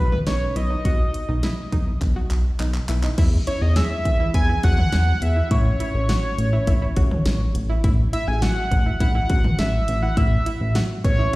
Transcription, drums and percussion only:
0.12 mid tom medium
0.27 snare loud
0.27 closed hi-hat medium
0.56 closed hi-hat medium
0.85 kick loud
0.85 closed hi-hat medium
1.14 closed hi-hat medium
1.43 snare loud
1.43 closed hi-hat medium
1.72 kick medium
1.72 closed hi-hat medium
2.01 kick medium
2.01 clap medium
2.01 closed hi-hat medium
2.31 clap medium
2.31 closed hi-hat medium
2.59 clap medium
2.59 closed hi-hat medium
2.74 clap medium
2.89 clap loud
2.89 closed hi-hat medium
3.03 clap medium
3.18 kick loud
3.18 closed hi-hat medium
3.18 crash loud
3.47 closed hi-hat medium
3.76 snare loud
3.76 closed hi-hat medium
4.05 kick medium
4.05 closed hi-hat medium
4.34 kick medium
4.34 closed hi-hat medium
4.63 kick loud
4.63 closed hi-hat medium
4.78 mid tom medium
4.92 snare loud
4.92 closed hi-hat medium
5.22 closed hi-hat medium
5.51 kick loud
5.51 closed hi-hat medium
5.80 closed hi-hat medium
6.09 snare loud
6.09 closed hi-hat medium
6.39 closed hi-hat medium
6.67 kick medium
6.67 closed hi-hat medium
6.97 kick loud
6.97 closed hi-hat medium
7.11 mid tom medium
7.26 snare loud
7.26 closed hi-hat medium
7.55 closed hi-hat medium
7.84 kick loud
7.84 closed hi-hat medium
8.13 closed hi-hat medium
8.42 snare loud
8.42 closed hi-hat medium
8.71 kick medium
8.71 closed hi-hat medium
9.00 kick medium
9.00 closed hi-hat medium
9.30 kick loud
9.30 closed hi-hat medium
9.44 mid tom medium
9.59 snare loud
9.59 closed hi-hat medium
9.88 closed hi-hat medium
10.17 kick loud
10.17 closed hi-hat medium
10.46 closed hi-hat medium
10.75 snare loud
10.75 closed hi-hat medium
11.04 kick medium
11.04 closed hi-hat medium
11.04 cowbell medium

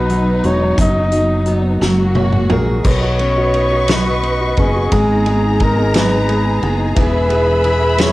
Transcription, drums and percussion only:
0.10 closed hi-hat soft
0.44 closed hi-hat soft
0.78 kick medium
0.78 closed hi-hat medium
1.12 closed hi-hat soft
1.46 closed hi-hat soft
1.82 snare medium
2.15 high tom medium
2.33 mid tom medium
2.50 mid tom medium
2.85 kick medium
2.85 crash medium
3.19 ride soft
3.54 ride soft
3.88 snare loud
3.88 ride medium
4.23 ride soft
4.57 kick medium
4.57 ride soft
4.92 kick medium
4.92 ride medium
5.26 ride soft
5.60 kick medium
5.60 ride soft
5.94 snare loud
5.94 ride medium
6.29 ride soft
6.63 ride soft
6.96 kick medium
6.96 ride medium
7.30 ride soft
7.64 ride soft
7.98 snare loud
7.98 ride medium

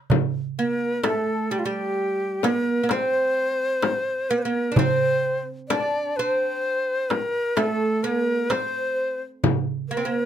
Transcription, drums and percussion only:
0.10 darbuka dum medium
0.10 frame drum medium
1.04 darbuka tek medium
1.04 frame drum medium
1.26 darbuka ka soft
1.50 darbuka ka soft
2.43 darbuka tek medium
2.43 frame drum medium
2.89 darbuka tek medium
2.89 frame drum medium
3.82 darbuka tek medium
3.82 frame drum medium
4.76 darbuka dum medium
4.76 frame drum medium
5.70 darbuka tek medium
5.70 frame drum medium
5.93 darbuka ka soft
6.17 darbuka ka soft
7.10 darbuka tek medium
7.10 frame drum medium
7.57 darbuka tek medium
7.57 frame drum medium
8.03 darbuka ka soft
8.50 darbuka tek medium
8.50 frame drum medium
9.44 darbuka dum medium
9.44 frame drum loud

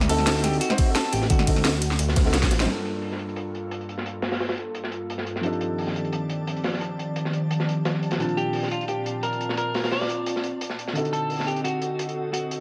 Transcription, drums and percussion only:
0.01 snare soft
0.01 closed hi-hat soft
0.09 closed hi-hat medium
0.09 ride medium
0.18 snare soft
0.26 snare loud
0.26 closed hi-hat loud
0.26 open hi-hat medium
0.35 snare soft
0.44 snare soft
0.44 closed hi-hat medium
0.44 ride medium
0.53 closed hi-hat soft
0.61 closed hi-hat loud
0.61 closed hi-hat medium
0.70 snare medium
0.78 kick loud
0.78 closed hi-hat medium
0.78 ride medium
0.95 snare loud
0.95 closed hi-hat loud
0.95 closed hi-hat medium
1.04 closed hi-hat soft
1.13 closed hi-hat medium
1.13 ride medium
1.22 snare medium
1.30 kick loud
1.30 closed hi-hat loud
1.30 closed hi-hat medium
1.39 snare soft
1.47 kick medium
1.47 closed hi-hat medium
1.47 ride medium
1.56 snare soft
1.65 snare loud
1.65 closed hi-hat loud
1.74 snare soft
1.82 closed hi-hat medium
1.82 ride medium
1.91 snare soft
1.99 closed hi-hat medium
1.99 closed hi-hat loud
2.08 snare medium
2.15 kick loud
2.15 snare loud
2.15 closed hi-hat medium
2.15 open hi-hat medium
2.15 ride medium
2.26 snare soft
2.33 snare loud
2.33 snare medium
2.33 closed hi-hat loud
2.33 open hi-hat medium
2.43 kick medium
2.43 snare medium
2.43 snare loud
2.43 open hi-hat medium
2.50 snare loud
2.50 closed hi-hat medium
2.50 open hi-hat medium
2.50 ride medium
2.59 snare medium
2.59 snare loud
2.59 open hi-hat medium
2.67 closed hi-hat medium
2.77 closed hi-hat soft
2.85 closed hi-hat medium
3.02 open hi-hat medium
3.12 snare soft
3.19 closed hi-hat medium
3.29 closed hi-hat soft
3.36 closed hi-hat medium
3.55 closed hi-hat medium
3.71 closed hi-hat medium
3.81 closed hi-hat soft
3.89 closed hi-hat medium
3.98 snare medium
4.06 closed hi-hat medium
4.22 snare loud
4.22 open hi-hat medium
4.31 snare loud
4.31 open hi-hat medium
4.40 snare medium
4.40 open hi-hat medium
4.49 snare loud
4.49 open hi-hat medium
4.58 closed hi-hat medium
4.75 closed hi-hat medium
4.84 snare soft
4.92 closed hi-hat medium
5.10 closed hi-hat medium
5.18 snare medium
5.26 closed hi-hat medium
5.36 snare soft
5.43 closed hi-hat medium
5.53 closed hi-hat soft
5.61 closed hi-hat medium
5.78 open hi-hat medium
5.87 snare soft
5.96 closed hi-hat medium
6.05 closed hi-hat soft
6.13 closed hi-hat medium
6.30 closed hi-hat medium
6.47 closed hi-hat medium
6.56 closed hi-hat soft
6.64 snare loud
6.64 open hi-hat medium
6.73 snare medium
6.81 closed hi-hat medium
6.99 closed hi-hat medium
7.16 closed hi-hat medium
7.25 snare soft
7.33 closed hi-hat medium
7.51 closed hi-hat medium
7.60 snare medium
7.69 closed hi-hat medium
7.85 snare loud
7.85 closed hi-hat medium
7.94 snare soft
8.03 closed hi-hat medium
8.11 snare loud
8.11 closed hi-hat medium
8.20 closed hi-hat medium
8.29 closed hi-hat soft
8.38 closed hi-hat medium
8.53 open hi-hat medium
8.63 snare soft
8.71 closed hi-hat medium
8.81 closed hi-hat soft
8.88 closed hi-hat medium
9.06 closed hi-hat medium
9.23 closed hi-hat medium
9.33 closed hi-hat soft
9.41 closed hi-hat medium
9.49 snare medium
9.57 closed hi-hat medium
9.74 snare loud
9.74 open hi-hat medium
9.84 snare loud
9.84 open hi-hat medium
9.92 snare loud
9.92 open hi-hat medium
10.01 snare medium
10.01 open hi-hat medium
10.09 closed hi-hat medium
10.26 closed hi-hat medium
10.36 snare soft
10.43 closed hi-hat medium
10.61 closed hi-hat medium
10.70 snare soft
10.79 closed hi-hat medium
10.88 snare soft
10.95 closed hi-hat medium
11.05 closed hi-hat soft
11.13 closed hi-hat medium
11.30 open hi-hat medium
11.40 snare soft
11.48 closed hi-hat medium
11.56 closed hi-hat soft
11.65 closed hi-hat medium
11.82 closed hi-hat medium
11.99 closed hi-hat medium
12.09 closed hi-hat soft
12.34 closed hi-hat medium
12.51 closed hi-hat medium

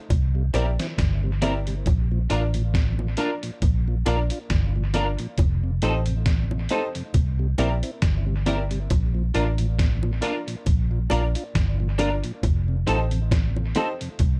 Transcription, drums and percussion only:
0.10 kick loud
0.10 closed hi-hat medium
0.10 high bongo medium
0.54 closed hi-hat medium
0.54 high bongo medium
0.79 snare medium
0.79 closed hi-hat medium
0.98 kick loud
0.98 snare loud
0.98 closed hi-hat loud
1.42 closed hi-hat medium
1.42 low bongo medium
1.67 closed hi-hat medium
1.86 kick loud
1.86 closed hi-hat loud
1.86 high bongo medium
2.30 closed hi-hat medium
2.54 closed hi-hat medium
2.74 kick loud
2.74 snare loud
2.74 closed hi-hat medium
2.99 high bongo medium
3.17 closed hi-hat medium
3.43 closed hi-hat medium
3.62 kick loud
3.62 closed hi-hat medium
3.62 high bongo medium
4.06 closed hi-hat medium
4.06 high bongo medium
4.30 closed hi-hat medium
4.50 kick loud
4.50 snare loud
4.50 closed hi-hat loud
4.94 closed hi-hat medium
4.94 low bongo medium
5.19 closed hi-hat soft
5.38 kick loud
5.38 closed hi-hat loud
5.38 high bongo medium
5.82 closed hi-hat medium
6.06 closed hi-hat medium
6.26 kick loud
6.26 snare loud
6.26 closed hi-hat medium
6.51 high bongo medium
6.69 closed hi-hat medium
6.95 closed hi-hat medium
7.14 kick loud
7.14 closed hi-hat medium
7.14 high bongo medium
7.58 closed hi-hat medium
7.58 high bongo medium
7.83 closed hi-hat medium
8.02 kick loud
8.02 snare loud
8.02 closed hi-hat loud
8.46 closed hi-hat medium
8.46 low bongo medium
8.71 closed hi-hat soft
8.90 kick loud
8.90 closed hi-hat loud
8.90 high bongo medium
9.35 closed hi-hat medium
9.58 closed hi-hat medium
9.79 kick loud
9.79 snare loud
9.79 closed hi-hat medium
10.03 high bongo medium
10.22 closed hi-hat medium
10.48 closed hi-hat medium
10.66 kick loud
10.66 closed hi-hat medium
10.66 high bongo medium
11.10 closed hi-hat medium
11.10 high bongo medium
11.35 closed hi-hat medium
11.55 kick loud
11.55 snare loud
11.55 closed hi-hat loud
11.99 closed hi-hat medium
11.99 low bongo medium
12.24 closed hi-hat soft
12.43 kick loud
12.43 closed hi-hat loud
12.43 high bongo medium
12.87 closed hi-hat medium
13.11 closed hi-hat medium
13.31 kick loud
13.31 snare loud
13.31 closed hi-hat medium
13.31 high bongo medium
13.56 high bongo medium
13.75 closed hi-hat medium
13.75 high bongo medium
13.75 low bongo medium
14.01 closed hi-hat medium
14.19 kick loud
14.19 closed hi-hat medium
14.19 high bongo medium

